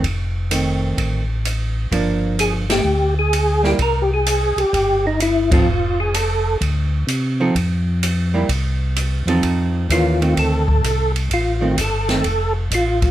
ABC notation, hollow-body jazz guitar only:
X:1
M:4/4
L:1/8
Q:"Swing" 1/4=128
K:Fmix
V:1 name="Hollow-body jazz guitar"
z2 [E,A,C]3 z3 | [F,B,D]3 z4 [G,B,=E] | z6 z [F,CEA] | z6 z [F,CEA] |
z3 [G,B,=E] z3 [F,C_EA]- | [F,CEA]2 [=E,B,_D] [_E,A,C]2 z3 | z [E,A,C] z [E,A,C] z4 |]